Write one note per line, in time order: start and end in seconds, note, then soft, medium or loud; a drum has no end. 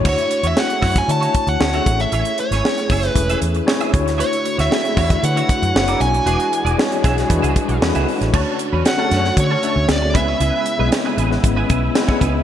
0.04 0.14 D2 medium
0.04 0.43 A3 medium
0.04 0.43 D4 medium
0.04 0.43 E4 medium
0.04 0.24 E4 medium
0.04 0.43 F#4 medium
0.04 0.18 F#4 medium
0.04 0.12 C5 medium
0.04 0.17 C#5 loud
0.04 kick loud
0.04 crash medium
0.09 0.47 C#5 medium
0.18 muted clean electric guitar stroke soft
0.18 closed hi-hat soft
0.31 muted clean electric guitar stroke soft
0.31 closed hi-hat medium
0.43 0.53 E2 medium
0.43 0.59 E4 soft
0.43 0.59 F#4 medium
0.43 0.59 C#5 medium
0.43 0.58 E5 medium
0.43 closed hi-hat soft
0.56 0.95 A3 medium
0.56 0.95 D4 medium
0.56 0.95 E4 medium
0.56 0.95 F#4 medium
0.56 0.95 C#5 medium
0.56 snare loud
0.60 0.99 F#5 medium
0.70 muted clean electric guitar stroke soft
0.70 closed hi-hat soft
0.82 1.01 F#2 medium
0.82 1.01 E4 medium
0.82 0.94 F#4 medium
0.82 0.93 C#5 medium
0.82 kick medium
0.82 snare soft
0.82 open hi-hat medium
0.94 1.10 G#5 medium
0.94 muted clean electric guitar stroke soft
0.94 kick loud
0.94 snare soft
0.94 closed hi-hat medium
1.08 1.27 D3 loud
1.08 1.47 A3 medium
1.08 1.47 D4 medium
1.08 1.47 E4 medium
1.08 1.47 F#4 medium
1.08 1.47 C#5 medium
1.08 1.50 A5 medium
1.08 muted clean electric guitar stroke soft
1.08 closed hi-hat medium
1.20 1.33 E4 medium
1.20 1.33 F#4 medium
1.20 1.34 C#5 medium
1.20 closed hi-hat medium
1.34 muted clean electric guitar stroke soft
1.34 kick medium
1.34 closed hi-hat medium
1.47 1.56 D2 medium
1.47 2.02 F#5 medium
1.47 muted clean electric guitar stroke soft
1.47 closed hi-hat soft
1.59 1.79 D2 loud
1.59 1.84 A3 medium
1.59 1.86 D4 medium
1.59 1.84 E4 medium
1.59 1.87 F#4 medium
1.59 1.85 C#5 medium
1.59 muted clean electric guitar stroke soft
1.59 snare loud
1.73 1.85 E4 medium
1.73 1.86 F#4 medium
1.73 1.86 C#5 medium
1.73 closed hi-hat soft
1.85 2.04 A1 medium
1.85 2.48 A3 medium
1.85 2.48 C#4 medium
1.85 2.48 E4 medium
1.85 2.49 G#4 medium
1.85 2.49 C#5 medium
1.85 muted clean electric guitar stroke soft
1.85 kick medium
1.85 closed hi-hat medium
2.00 2.40 E5 medium
2.00 muted clean electric guitar stroke soft
2.00 closed hi-hat soft
2.12 2.21 A1 medium
2.12 2.31 E4 medium
2.12 2.26 G#4 medium
2.12 2.25 C#5 medium
2.12 closed hi-hat medium
2.25 muted clean electric guitar stroke soft
2.25 closed hi-hat soft
2.38 3.09 C#5 medium
2.38 muted clean electric guitar stroke soft
2.38 closed hi-hat medium
2.51 2.60 G#1 medium
2.51 2.67 E4 soft
2.51 2.67 G#4 soft
2.51 2.66 C#5 medium
2.51 snare soft
2.51 closed hi-hat medium
2.63 3.02 A3 medium
2.63 3.02 C#4 medium
2.63 3.02 E4 medium
2.63 3.02 G#4 medium
2.63 3.02 C#5 medium
2.63 snare loud
2.78 muted clean electric guitar stroke soft
2.78 closed hi-hat soft
2.89 3.08 F#1 medium
2.89 3.10 E4 medium
2.89 3.04 G#4 medium
2.89 3.03 E5 medium
2.89 kick medium
2.89 open hi-hat medium
3.03 muted clean electric guitar stroke soft
3.03 snare soft
3.03 closed hi-hat soft
3.09 3.39 B4 medium
3.14 3.34 E1 medium
3.14 3.53 A3 medium
3.14 3.53 C#4 medium
3.14 3.54 E4 medium
3.14 3.54 G#4 medium
3.14 3.54 B4 medium
3.14 muted clean electric guitar stroke soft
3.14 kick medium
3.14 closed hi-hat medium
3.29 3.41 E4 medium
3.29 3.42 G#4 medium
3.29 3.43 E5 medium
3.29 closed hi-hat medium
3.42 3.60 E2 medium
3.42 muted clean electric guitar stroke soft
3.42 closed hi-hat medium
3.54 muted clean electric guitar stroke soft
3.54 closed hi-hat soft
3.66 3.91 A3 medium
3.66 3.93 C#4 medium
3.66 3.91 E4 medium
3.66 3.93 G#4 medium
3.66 3.92 C#5 loud
3.66 muted clean electric guitar stroke soft
3.66 snare loud
3.80 3.91 E4 medium
3.80 3.93 G#4 medium
3.80 3.93 E5 medium
3.80 closed hi-hat soft
3.92 4.21 D2 medium
3.92 4.55 A3 medium
3.92 4.55 D4 medium
3.92 4.55 E4 medium
3.92 4.55 F#4 medium
3.92 4.56 C#5 medium
3.92 muted clean electric guitar stroke soft
3.92 kick loud
3.92 closed hi-hat medium
4.06 muted clean electric guitar stroke soft
4.06 snare soft
4.06 closed hi-hat soft
4.18 5.74 D3 medium
4.18 4.38 E4 medium
4.18 5.74 E4 medium
4.18 4.31 F#4 medium
4.18 6.25 F#4 medium
4.18 4.30 C#5 loud
4.18 4.56 C#5 medium
4.18 5.74 C#5 medium
4.18 closed hi-hat medium
4.32 muted clean electric guitar stroke soft
4.32 closed hi-hat soft
4.44 muted clean electric guitar stroke soft
4.44 closed hi-hat medium
4.58 4.68 D2 medium
4.58 4.74 E4 medium
4.58 4.73 F#4 soft
4.58 4.73 C#5 medium
4.58 5.26 E5 medium
4.58 snare soft
4.58 closed hi-hat medium
4.70 5.09 A3 medium
4.70 5.09 D4 medium
4.70 5.09 E4 medium
4.70 5.09 F#4 medium
4.70 5.10 G#4 medium
4.70 snare loud
4.85 muted clean electric guitar stroke soft
4.85 closed hi-hat soft
4.97 5.15 E2 medium
4.97 5.16 E4 medium
4.97 5.10 F#4 medium
4.97 5.09 C#5 medium
4.97 kick medium
4.97 open hi-hat medium
5.10 muted clean electric guitar stroke soft
5.10 kick medium
5.10 closed hi-hat medium
5.22 5.41 D3 loud
5.22 5.61 A3 medium
5.22 5.61 D4 medium
5.22 5.61 E4 medium
5.22 5.61 F#4 medium
5.22 5.62 B4 medium
5.22 5.76 F#5 medium
5.22 muted clean electric guitar stroke soft
5.22 closed hi-hat medium
5.36 5.48 E4 medium
5.36 5.48 F#4 medium
5.36 5.49 C#5 medium
5.36 closed hi-hat medium
5.49 muted clean electric guitar stroke soft
5.49 kick medium
5.49 closed hi-hat medium
5.62 5.71 F#2 medium
5.62 muted clean electric guitar stroke soft
5.62 closed hi-hat soft
5.74 5.93 F#1 loud
5.74 6.13 A#3 medium
5.74 6.27 A#3 medium
5.74 6.13 D4 medium
5.74 6.13 E4 medium
5.74 6.27 E4 medium
5.74 6.13 F#4 medium
5.74 5.81 C5 medium
5.74 6.00 F#5 medium
5.74 muted clean electric guitar stroke soft
5.74 snare loud
5.82 6.17 C#5 medium
5.88 6.01 E4 medium
5.88 6.01 A#4 medium
5.88 6.01 D5 medium
5.88 closed hi-hat medium
6.00 6.19 B1 medium
6.00 7.78 G#5 medium
6.00 closed hi-hat medium
6.14 muted clean electric guitar stroke soft
6.14 closed hi-hat soft
6.25 6.35 E1 loud
6.25 8.31 E3 medium
6.25 6.64 G#3 medium
6.25 6.64 D4 medium
6.25 8.32 D4 medium
6.25 6.64 E4 medium
6.25 6.65 F#4 medium
6.25 8.31 F#4 medium
6.25 6.45 F#4 medium
6.25 8.31 G#4 medium
6.25 6.39 G#4 medium
6.25 6.65 B4 medium
6.25 6.39 D5 loud
6.25 closed hi-hat medium
6.40 muted clean electric guitar stroke soft
6.40 closed hi-hat medium
6.53 muted clean electric guitar stroke soft
6.53 closed hi-hat medium
6.65 6.74 E1 medium
6.65 6.81 F#4 medium
6.65 6.80 G#4 medium
6.65 6.80 D5 medium
6.65 closed hi-hat medium
6.77 7.16 G#3 medium
6.77 7.17 D4 medium
6.77 7.16 E4 medium
6.77 7.17 F#4 medium
6.77 7.17 C#5 medium
6.77 snare loud
6.91 muted clean electric guitar stroke soft
6.91 closed hi-hat soft
7.04 7.22 B1 medium
7.04 7.23 F#4 medium
7.04 7.17 G#4 medium
7.04 7.17 E5 medium
7.04 kick medium
7.04 snare soft
7.04 closed hi-hat medium
7.18 muted clean electric guitar stroke soft
7.18 snare soft
7.18 closed hi-hat medium
7.29 7.39 E2 loud
7.29 7.36 G3 medium
7.29 7.68 D4 medium
7.29 7.68 E4 medium
7.29 7.68 F#4 medium
7.29 7.68 B4 loud
7.29 muted clean electric guitar stroke soft
7.29 kick medium
7.29 closed hi-hat medium
7.35 7.71 G#3 medium
7.42 7.52 C#2 medium
7.42 7.54 F#4 medium
7.42 7.55 G#4 medium
7.42 7.56 E5 medium
7.42 closed hi-hat medium
7.55 muted clean electric guitar stroke soft
7.55 kick medium
7.55 closed hi-hat medium
7.69 7.78 B1 medium
7.69 muted clean electric guitar stroke medium
7.69 closed hi-hat soft
7.81 7.91 E2 loud
7.81 8.20 G#3 medium
7.81 8.20 D4 medium
7.81 8.20 E4 medium
7.81 8.20 F#4 medium
7.81 7.88 A4 medium
7.81 muted clean electric guitar stroke medium
7.81 snare loud
7.88 8.23 B4 loud
7.95 8.04 C#2 medium
7.95 8.07 F#4 medium
7.95 8.07 G#4 medium
7.95 8.08 E5 medium
7.95 closed hi-hat soft
8.08 muted clean electric guitar stroke soft
8.08 open hi-hat medium
8.21 8.30 A1 medium
8.21 muted clean electric guitar stroke soft
8.21 snare soft
8.21 closed hi-hat medium
8.32 8.43 D2 loud
8.32 10.14 D3 medium
8.32 8.81 A3 medium
8.32 10.13 A3 medium
8.32 8.81 C#4 medium
8.32 8.58 C#4 medium
8.32 8.81 D4 medium
8.32 8.81 F#4 medium
8.32 8.58 F#4 medium
8.32 10.14 F#4 medium
8.32 8.58 A4 loud
8.32 8.81 C#5 medium
8.32 10.14 C#5 medium
8.32 kick loud
8.32 crash medium
8.59 muted clean electric guitar stroke soft
8.59 closed hi-hat medium
8.73 8.82 E2 medium
8.73 8.85 C#4 medium
8.73 8.85 F#4 medium
8.73 8.87 B4 medium
8.85 9.35 F#5 loud
8.85 muted clean electric guitar stroke soft
8.85 snare loud
8.85 closed hi-hat medium
8.97 9.46 A3 medium
8.97 9.46 C#4 medium
8.97 9.10 C#4 medium
8.97 9.46 D4 medium
8.97 9.46 F#4 medium
8.97 9.11 F#4 medium
8.97 9.12 A4 medium
8.97 9.46 C#5 medium
9.11 9.30 F#2 medium
9.11 9.26 C#4 medium
9.11 9.25 F#4 medium
9.11 9.23 A4 medium
9.11 snare soft
9.11 closed hi-hat medium
9.24 muted clean electric guitar stroke medium
9.24 snare soft
9.37 9.55 D3 loud
9.37 9.87 C#5 medium
9.37 muted clean electric guitar stroke soft
9.37 kick medium
9.37 closed hi-hat medium
9.50 9.62 C#4 medium
9.50 9.63 F#4 medium
9.50 9.64 A4 medium
9.63 10.01 A3 medium
9.63 10.01 C#4 medium
9.63 9.78 C#4 medium
9.63 10.01 D4 medium
9.63 10.01 F#4 medium
9.63 9.75 F#4 medium
9.63 9.75 A4 medium
9.63 10.02 E5 medium
9.63 closed hi-hat medium
9.76 9.85 D2 medium
9.76 muted clean electric guitar stroke medium
9.88 10.15 D2 loud
9.88 10.16 D5 medium
9.88 muted clean electric guitar stroke soft
9.88 snare loud
9.88 closed hi-hat medium
10.02 muted clean electric guitar stroke soft
10.14 10.33 C#2 medium
10.14 12.43 C#3 medium
10.14 10.66 G#3 medium
10.14 12.43 G#3 medium
10.14 10.66 B3 medium
10.14 10.66 C#4 medium
10.14 10.28 E4 medium
10.14 10.67 E4 medium
10.14 12.43 E4 medium
10.14 10.27 G#4 loud
10.14 10.67 B4 medium
10.14 10.27 B4 loud
10.14 10.90 E5 medium
10.14 kick loud
10.14 closed hi-hat medium
10.28 10.39 E4 medium
10.28 10.40 G#4 medium
10.28 10.41 C#5 medium
10.40 10.49 C#2 loud
10.40 10.64 E4 loud
10.40 10.65 G#4 loud
10.40 10.65 B4 loud
10.40 closed hi-hat medium
10.66 muted clean electric guitar stroke soft
10.66 closed hi-hat medium
10.78 10.89 B1 medium
10.78 11.17 G#3 medium
10.78 11.17 B3 medium
10.78 11.18 C#4 medium
10.78 11.18 E4 medium
10.78 10.91 E4 medium
10.78 10.91 G#4 medium
10.78 10.91 B4 medium
10.78 11.18 B4 medium
10.92 muted clean electric guitar stroke soft
10.92 snare loud
10.92 closed hi-hat medium
11.05 11.16 E4 medium
11.05 11.17 G#4 medium
11.05 11.17 B4 medium
11.17 11.36 A1 medium
11.17 11.33 E4 medium
11.17 11.31 G#4 medium
11.17 11.30 B4 medium
11.17 closed hi-hat medium
11.30 11.78 G#3 medium
11.30 11.79 B3 medium
11.30 11.79 C#4 medium
11.30 11.79 E4 medium
11.30 11.79 B4 loud
11.30 muted clean electric guitar stroke soft
11.30 snare soft
11.44 11.62 G#1 loud
11.44 muted clean electric guitar stroke soft
11.44 kick medium
11.44 closed hi-hat medium
11.56 11.68 E4 medium
11.56 11.69 G#4 medium
11.56 11.69 B4 medium
11.69 11.88 B1 medium
11.69 11.84 E4 medium
11.69 11.82 G#4 medium
11.69 11.82 B4 medium
11.69 kick medium
11.69 closed hi-hat medium
11.83 muted clean electric guitar stroke soft
11.95 12.34 G#3 loud
11.95 12.34 B3 medium
11.95 12.34 C#4 medium
11.95 12.34 E4 medium
11.95 12.34 B4 loud
11.95 muted clean electric guitar stroke soft
11.95 snare loud
11.95 closed hi-hat medium
12.08 12.19 E4 soft
12.08 12.20 G#4 medium
12.08 12.21 C#5 medium
12.08 kick medium
12.20 12.40 C#2 medium
12.20 12.40 E4 medium
12.20 12.33 G#4 medium
12.20 12.32 B4 medium
12.20 kick medium
12.20 closed hi-hat medium
12.34 muted clean electric guitar stroke soft